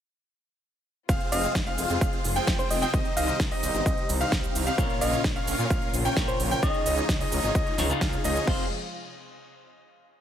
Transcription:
1.09 detuned saw bass F1, string section C3 F3 G#3 F4, supersaw synth C4 F4 G#4 C5 F5, grand piano F5, kick, closed hi-hat, shaker
1.21 closed hi-hat
1.32 detuned saw bass F1, supersaw synth C4 F4 G#4 C5 F5, soft synth lead D#5, grand piano F5, open hi-hat, shaker
1.44 closed hi-hat, shaker
1.55 detuned saw bass F1, kick, snare, closed hi-hat, shaker
1.66 supersaw synth C4 F4 G#4 C5 F5, grand piano F5, closed hi-hat
1.78 detuned saw bass F1, open hi-hat, shaker
1.90 detuned saw bass F2, closed hi-hat, shaker
2.01 detuned saw bass F1, supersaw synth C4 G#4 C5, grand piano F5, kick, closed hi-hat, shaker
2.13 closed hi-hat
2.24 detuned saw bass F1, open hi-hat, shaker
2.36 supersaw synth C4 F4 G#4 C5 G5, grand piano G5, closed hi-hat, shaker
2.47 detuned saw bass F1, kick, snare, closed hi-hat, shaker
2.59 soft synth lead C5, closed hi-hat, shaker
2.70 detuned saw bass F1, soft synth lead D#5, open hi-hat, shaker
2.82 supersaw synth C4 F4 G#4 C5 G5, soft synth lead D#5, grand piano G5, closed hi-hat, shaker
2.93 detuned saw bass C2, string section D#3 G3 D#4, supersaw synth C4 D#4 G4 C5 D#5, grand piano D#5, kick, closed hi-hat, shaker
3.05 closed hi-hat
3.17 detuned saw bass C2, supersaw synth C4 D#4 G4 C5 D#5, grand piano D#5, soft synth lead F5, open hi-hat, shaker
3.28 soft synth lead F5, closed hi-hat, shaker
3.40 detuned saw bass C2, kick, snare, closed hi-hat, shaker
3.51 supersaw synth C4 D#4 G4 C5 D#5, grand piano D#5, open hi-hat
3.63 detuned saw bass C2, open hi-hat, shaker
3.74 detuned saw bass G1, closed hi-hat, shaker
3.86 detuned saw bass C2, grand piano D#5, kick, closed hi-hat, shaker
3.98 closed hi-hat
4.09 detuned saw bass C2, open hi-hat, shaker
4.20 supersaw synth C4 D#4 G4 C5 F5, grand piano F5, closed hi-hat, shaker
4.32 detuned saw bass C2, kick, snare, closed hi-hat, shaker
4.44 closed hi-hat, shaker
4.55 detuned saw bass C2, open hi-hat, shaker
4.67 supersaw synth C4 D#4 G4 C5 F5, grand piano F5, closed hi-hat, shaker
4.77 detuned saw bass A#1, clean electric guitar A#2 C#4 F4 A#4 C#5, string section C#3 F3 A#3 F4, supersaw synth C#4 F4 A#4 C#5 F5, kick, closed hi-hat, shaker
4.90 closed hi-hat
5.01 detuned saw bass A#1, supersaw synth C#4 F4 A#4 C#5 F5, soft synth lead D#5, grand piano F5, open hi-hat, shaker
5.13 closed hi-hat, shaker
5.24 detuned saw bass A#1, kick, snare, closed hi-hat, shaker
5.36 supersaw synth C#4 F4 A#4 C#5 F5, grand piano F5, closed hi-hat
5.47 detuned saw bass A#1, open hi-hat, shaker
5.59 detuned saw bass A#2, closed hi-hat, shaker
5.70 detuned saw bass A#1, supersaw synth C#4 F4 A#4 F5, grand piano F5, kick, closed hi-hat, shaker
5.82 closed hi-hat
5.93 detuned saw bass A#1, open hi-hat, shaker
6.05 supersaw synth C#4 F4 A#4 C#5 G5, grand piano G5, shaker
6.16 detuned saw bass A#1, clean electric guitar A#2 C#4 F4 A#4 C#5, kick, snare, closed hi-hat, shaker
6.28 soft synth lead C5, closed hi-hat, shaker
6.40 detuned saw bass A#1, open hi-hat, shaker
6.51 supersaw synth C#4 F4 A#4 C#5 G5, grand piano G5, closed hi-hat, shaker
6.62 detuned saw bass C#2, clean electric guitar C#3 D#4 F4 G#4 C#5, string section G#3 D#4, supersaw synth D#4 F4 G#4 C#5 D#5, grand piano D#5, soft synth lead D#5, kick, closed hi-hat, shaker
6.74 closed hi-hat
6.86 detuned saw bass C#2, supersaw synth D#4 F4 G#4 C#5 D#5, grand piano D#5, open hi-hat, shaker
6.97 closed hi-hat, shaker
7.09 detuned saw bass C#2, kick, snare, closed hi-hat, shaker
7.20 supersaw synth D#4 F4 G#4 C#5 D#5, grand piano D#5, open hi-hat, shaker
7.32 detuned saw bass C#2, open hi-hat, shaker
7.43 detuned saw bass G#1, closed hi-hat, shaker
7.55 detuned saw bass C#2, supersaw synth D#4 F4 G#4 C#5 D#5, grand piano D#5, kick, closed hi-hat, shaker
7.67 closed hi-hat
7.77 detuned saw bass C#2, clean electric guitar C#3 D#4 F4 G#4 C#5, snare, open hi-hat, shaker
7.89 clean electric guitar C#3 D#4 F4 G#4 F5, closed hi-hat, shaker
8.01 detuned saw bass C#2, supersaw synth D#4 F4 G#4 C#5 F5, grand piano F5, kick, snare, closed hi-hat, shaker
8.13 closed hi-hat, shaker
8.24 detuned saw bass C#2, supersaw synth D#4 F4 G#4 C#5 D#5, grand piano D#5, open hi-hat, shaker
8.36 closed hi-hat, shaker
8.46 detuned saw bass F1, string section C3 F3 G#3 F4, clean electric guitar C4 F4 G#4 C5, supersaw synth C4 C5, grand piano F5, kick, crash

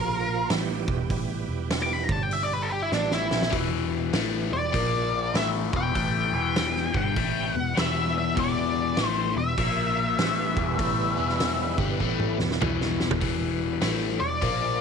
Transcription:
Already playing: picked electric bass A#1, tonewheel organ F3 A#3 F4, lead electric guitar A#4
0.50 picked electric bass A1, tonewheel organ E3 G3 B3 G4, snare, open hi-hat
0.88 picked electric bass E1, kick
1.10 picked electric bass A1, kick, open hi-hat
1.49 picked electric bass E1
1.70 snare, open hi-hat
1.82 lead electric guitar D6
1.93 lead electric guitar B5
2.04 lead electric guitar A#5
2.09 picked electric bass G1, tonewheel organ G3 D4 G4, lead electric guitar A5, kick
2.23 lead electric guitar G5
2.31 lead electric guitar E5, open hi-hat
2.43 lead electric guitar D5
2.53 lead electric guitar B4
2.62 lead electric guitar A4
2.72 lead electric guitar G4
2.82 lead electric guitar E4
2.92 picked electric bass A1, tonewheel organ E3 G3 B3 G4, lead electric guitar D4, snare
3.11 lead electric guitar E4, snare
3.23 tonewheel organ A3 B3
3.28 picked electric bass A#1, tonewheel organ C4 D4, snare
3.33 tonewheel organ E4 F4
3.39 tonewheel organ G4 A4, snare
3.45 tonewheel organ B4 C5
3.50 picked electric bass E1, overdriven electric guitar E2 B2 E3, tonewheel organ E3 G3 B3 G4 D5, kick, open hi-hat
4.13 picked electric bass A1, overdriven electric guitar A2 E3 A3, snare, open hi-hat
4.51 picked electric bass E1, overdriven electric guitar E2 B2, lead electric guitar D5
4.72 picked electric bass A#1, overdriven electric guitar A#2 F3 A#3, tonewheel organ A#3 F4 A#4, kick, open hi-hat
5.34 picked electric bass A1, overdriven electric guitar A2 E3 A3, tonewheel organ G3 B3 E4 B4, lead electric guitar E5, snare, open hi-hat
5.72 picked electric bass E1, overdriven electric guitar E2 B2 E3, kick
5.77 lead electric guitar G5
5.94 picked electric bass A1, overdriven electric guitar A2 E3 A3, kick, open hi-hat
6.32 picked electric bass E1, overdriven electric guitar E2 B2 E3
6.56 snare, open hi-hat
6.76 snare
6.93 picked electric bass G1, overdriven electric guitar G2 D3 G3, kick
6.97 lead electric guitar G5
7.16 picked electric bass A1, overdriven electric guitar A2 E3 A3, kick, open hi-hat
7.54 picked electric bass E1, overdriven electric guitar E2 B2, lead electric guitar F#5
7.75 picked electric bass E1, overdriven electric guitar E2 B2 E3, tonewheel organ G3 B3 E4, snare, open hi-hat
7.79 lead electric guitar E5
8.18 lead electric guitar E5
8.35 picked electric bass E1, overdriven electric guitar E2 B2 E3, kick, open hi-hat
8.40 lead electric guitar D5
8.97 picked electric bass A1, overdriven electric guitar A2 E3 A3, snare, open hi-hat
9.06 lead electric guitar C5
9.36 picked electric bass E1, overdriven electric guitar E2 B2, lead electric guitar E5
9.58 picked electric bass A#1, overdriven electric guitar A#2 F3 A#3, tonewheel organ A#3 F4 A#4, kick, open hi-hat
10.18 picked electric bass A1, overdriven electric guitar A2 E3 A3, tonewheel organ G#3 C4 F4 C5, snare, open hi-hat
10.38 tonewheel organ G3 B3 E4 B4
10.57 picked electric bass E1, overdriven electric guitar E2 B2 E3, kick
10.78 picked electric bass A1, overdriven electric guitar A2 E3 A3, kick, open hi-hat
11.16 picked electric bass E1, overdriven electric guitar E2 B2 E3
11.29 snare
11.40 snare, open hi-hat
11.78 picked electric bass G1, overdriven electric guitar G2 D3 G3, kick
12.00 picked electric bass A1, overdriven electric guitar A2 E3 A3, kick
12.20 high tom
12.38 picked electric bass E1, overdriven electric guitar E2 B2, snare
12.51 snare
12.61 picked electric bass E1, overdriven electric guitar E2 B2 E3, tonewheel organ G3 B3 E4, mid tom
12.81 snare
13.00 snare
13.11 floor tom
13.21 picked electric bass E1, overdriven electric guitar E2 B2 E3, kick, open hi-hat
13.81 picked electric bass A1, overdriven electric guitar A2 E3 A3, snare, open hi-hat
14.20 picked electric bass E1, overdriven electric guitar E2 B2, lead electric guitar D5
14.41 picked electric bass A#1, overdriven electric guitar A#2 F3 A#3, tonewheel organ A#3 A#4, kick, open hi-hat
14.45 tonewheel organ F4

